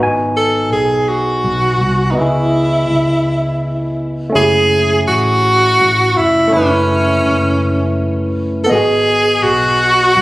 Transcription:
Already playing: tine electric piano B3 D#4
0.00 fingered electric bass G#1, tine electric piano F#4 G#5
0.36 tenor saxophone A4
0.72 fingered electric bass B1, tenor saxophone G#4
1.08 tenor saxophone F#4
1.44 fingered electric bass B1
1.81 fingered electric bass C2
2.10 tine electric piano B3, tenor saxophone D#4
2.15 fingered electric bass C#2, tenor saxophone E4, tine electric piano E4 D#5
2.21 tine electric piano G#4
2.90 fingered electric bass C#2
4.29 tine electric piano A3 C#4
4.35 fingered electric bass F#1, tine electric piano E4 G4, tenor saxophone G#4
4.45 tine electric piano G#4
5.08 fingered electric bass A1, tenor saxophone F#4
5.80 fingered electric bass A1
6.17 fingered electric bass F1, tenor saxophone E4
6.48 tine electric piano A3 C#4
6.53 fingered electric bass F#1, tenor saxophone C#4, tine electric piano E4 B4
7.26 fingered electric bass F#1
8.64 tine electric piano B3, tenor saxophone A4
8.69 fingered electric bass G#1, tine electric piano F#4 D#5, tenor saxophone G#4
8.75 tine electric piano G#4
9.43 fingered electric bass B1, tenor saxophone F#4
10.17 fingered electric bass B1

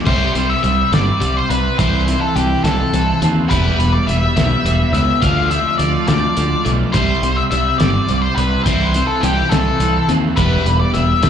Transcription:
0.06 fingered electric bass C2, overdriven electric guitar G3 C4 E4, transistor combo organ G3 C4 E4 C5, lead electric guitar C5, kick, crash
0.35 fingered electric bass C2, overdriven electric guitar G3 C4, closed hi-hat
0.50 lead electric guitar E5
0.63 fingered electric bass C2, overdriven electric guitar G3 C4, lead electric guitar E5, closed hi-hat
0.92 fingered electric bass G1, overdriven electric guitar G3 C4, lead electric guitar D5, snare, closed hi-hat
1.20 fingered electric bass C2, overdriven electric guitar G3 C4, closed hi-hat
1.37 lead electric guitar C5
1.50 fingered electric bass C2, overdriven electric guitar G3 C4, lead electric guitar B4, closed hi-hat
1.78 fingered electric bass C2, overdriven electric guitar E3 C4 E4, transistor combo organ A3, lead electric guitar C5, kick, closed hi-hat
2.08 overdriven electric guitar E3 C4, closed hi-hat
2.21 lead electric guitar A4
2.35 fingered electric bass C2, overdriven electric guitar E3 C4, lead electric guitar G4, closed hi-hat
2.64 fingered electric bass C2, overdriven electric guitar E3 C4, lead electric guitar A4, snare, closed hi-hat
2.93 fingered electric bass C2, overdriven electric guitar E3 C4, closed hi-hat
3.22 fingered electric bass D#2, overdriven electric guitar E3 C4, closed hi-hat
3.49 fingered electric bass E1, overdriven electric guitar G3 B3 E4, transistor combo organ G3 D4 B4, lead electric guitar B4, kick, closed hi-hat
3.79 fingered electric bass E1, overdriven electric guitar G3 B3, closed hi-hat
3.93 lead electric guitar D5
4.07 fingered electric bass E1, overdriven electric guitar G3 B3, lead electric guitar E5, closed hi-hat
4.36 fingered electric bass B1, overdriven electric guitar G3 B3, snare, closed hi-hat
4.64 fingered electric bass E1, overdriven electric guitar G3 B3, closed hi-hat
4.92 fingered electric bass C#2, overdriven electric guitar G3 B3, lead electric guitar E5, closed hi-hat
5.22 fingered electric bass D2, overdriven electric guitar F3 A3 D4, transistor combo organ A3 F4 D5, lead electric guitar F5, kick, closed hi-hat
5.50 overdriven electric guitar F3 A3, lead electric guitar E5, closed hi-hat
5.78 fingered electric bass D2, overdriven electric guitar F3 A3, lead electric guitar D5, closed hi-hat
6.08 fingered electric bass D2, overdriven electric guitar F3 A3, lead electric guitar D5, snare, closed hi-hat
6.37 fingered electric bass D2, overdriven electric guitar F3 A3, closed hi-hat
6.65 fingered electric bass B1, overdriven electric guitar F3 A3, closed hi-hat
6.93 fingered electric bass C2, overdriven electric guitar G3 C4 E4, transistor combo organ G3 C4 E4 C5, lead electric guitar C5, kick, closed hi-hat
7.23 fingered electric bass C2, overdriven electric guitar G3 C4, closed hi-hat
7.36 lead electric guitar E5
7.51 fingered electric bass C2, overdriven electric guitar G3 C4, lead electric guitar E5, closed hi-hat
7.78 fingered electric bass G1, overdriven electric guitar G3 C4, lead electric guitar D5, snare, closed hi-hat
8.09 fingered electric bass C2, overdriven electric guitar G3 C4, closed hi-hat
8.22 lead electric guitar C5
8.36 fingered electric bass C2, overdriven electric guitar G3 C4, lead electric guitar B4, closed hi-hat
8.64 fingered electric bass C2, overdriven electric guitar E3 C4, transistor combo organ A3 C5, lead electric guitar C5, kick, closed hi-hat
8.68 overdriven electric guitar E4
8.94 overdriven electric guitar E3 C4, closed hi-hat
9.07 lead electric guitar A4
9.21 fingered electric bass C2, overdriven electric guitar E3 C4, lead electric guitar G4, closed hi-hat
9.49 fingered electric bass C2, overdriven electric guitar E3 C4, lead electric guitar A4, snare, closed hi-hat
9.80 fingered electric bass C2, overdriven electric guitar E3 C4, closed hi-hat
10.09 fingered electric bass D#2, overdriven electric guitar E3 C4, closed hi-hat
10.36 fingered electric bass E1, overdriven electric guitar G3 B3 E4, transistor combo organ G3 D4 B4, lead electric guitar B4, kick, closed hi-hat
10.65 fingered electric bass E1, overdriven electric guitar G3 B3, closed hi-hat
10.80 lead electric guitar D5
10.94 fingered electric bass E1, overdriven electric guitar G3 B3, lead electric guitar E5, closed hi-hat
11.23 fingered electric bass B1, overdriven electric guitar G3 B3, snare, closed hi-hat

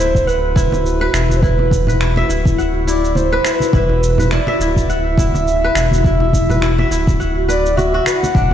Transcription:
Already playing: kora E4 B4 E5, ambient pad E4 F#4, soft synth lead C5
0.00 analog synth bass D1, shaker
0.15 kick, shaker
0.27 soft synth lead B4, kora F#5, shaker
0.56 kora E4, kick, shaker
0.72 high conga, shaker
0.86 shaker
1.01 kora B4
1.14 analog synth bass E1, kora E4, finger snap, shaker
1.30 high conga, shaker
1.37 soft synth lead C5
1.41 kora E4, soft synth lead B4, kick, shaker
1.59 muted conga
1.71 kick, high conga, shaker
1.87 kora B4, low conga, shaker
2.00 kora E4, finger snap, shaker
2.16 kora E5, muted conga
2.29 analog synth bass D1, kora E4, shaker
2.45 kick, shaker
2.58 kora F#5, shaker
2.86 kora E4, soft synth lead D5, high conga, shaker
3.05 shaker
3.15 soft synth lead C5, high conga, shaker
3.32 kora B4
3.44 kora E4, soft synth lead C5, finger snap, shaker
3.55 soft synth lead B4
3.60 high conga, shaker
3.73 analog synth bass E1, kora E4, kick, shaker
3.89 muted conga
4.03 shaker
4.18 kora B4, low conga, shaker
4.31 kora E4, soft synth lead D5, finger snap, shaker
4.47 kora E5, muted conga
4.60 analog synth bass D1, kora E4, shaker
4.76 kick, shaker
4.89 soft synth lead E5, kora F#5, shaker
5.18 kora E4, kick, shaker
5.35 high conga, shaker
5.48 shaker
5.64 kora B4
5.75 analog synth bass E1, kora E4, finger snap, shaker
5.92 high conga, shaker
6.04 kora E4, soft synth lead E5, kick, shaker
6.20 muted conga
6.33 kick, high conga, shaker
6.50 kora B4, low conga, shaker
6.62 kora E4, finger snap, shaker
6.79 kora E5, muted conga
6.91 analog synth bass D1, kora E4, shaker
7.07 kick, shaker
7.20 kora F#5, shaker
7.48 kora B4, soft synth lead D5, high conga, shaker
7.66 shaker
7.76 kora F#4, soft synth lead E5, high conga, shaker
7.94 kora F#4
8.05 kora B4, soft synth lead F#5, finger snap, high conga, shaker
8.23 muted conga, high conga, shaker
8.35 analog synth bass E1, kora D4, kick, shaker

